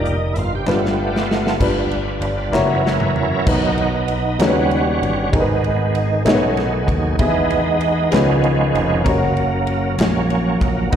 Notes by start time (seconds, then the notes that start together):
Already playing: F1 G3 A#3 D#4 F4 A#4
0.06 D#4, closed hi-hat
0.34 G1 E4, closed hi-hat
0.38 F4
0.55 G4
0.66 G1 G2 G3 A3 B3 D4 F4 B4, snare, clap
0.85 snare
1.00 G4
1.16 snare
1.31 snare
1.47 snare
1.59 G1 G2 G3 D4 F4 B4, kick, crash
1.91 ride
2.22 G1, ride
2.52 F#1 E3 F#3 A#3 B3 C#4 E4 F#4 A#4 C#5, snare, clap
2.86 snare
3.00 mid tom
3.16 floor tom
3.46 B1 B2 D#3 F#3 B3 D#4 F#4 B4, kick, crash
3.78 ride
4.08 ride
4.39 D#2 C#3 D#3 G3 B3 C#4 D#4 F#4 A4, snare, clap, ride
4.48 B4
4.71 ride
5.02 G1, ride
5.32 G#1 G#2 D#3 G#3 B3 D#4 G#4 A#4, kick, ride
5.41 B4
5.64 ride
5.95 ride
6.25 B1 B2 D#3 F#3 A3 B3 C#4 D#4 G#4 A#4, snare, clap, ride
6.34 B4
6.53 C#4, ride
6.59 B3, snare
6.70 A3
6.80 B3
6.88 D#2, kick, ride
7.19 E2 E3 G#3 B3 D#4 E4 G#4, kick, ride
7.50 ride
7.81 ride
8.11 C#2 C#3 D#3 F3 G#3 B3 C#4 F4 B4, snare, clap, ride
8.44 ride
8.75 F1, ride
9.04 F#1 C#3 F#3 A#3 C#4, kick, ride
9.08 F#4
9.37 ride
9.67 ride
9.98 A#1 F#3 A#3 C#4, snare, clap, ride
10.30 ride
10.61 A#1, kick, ride
10.90 B1 B2 D#3 F#3 B3 D#4, kick, ride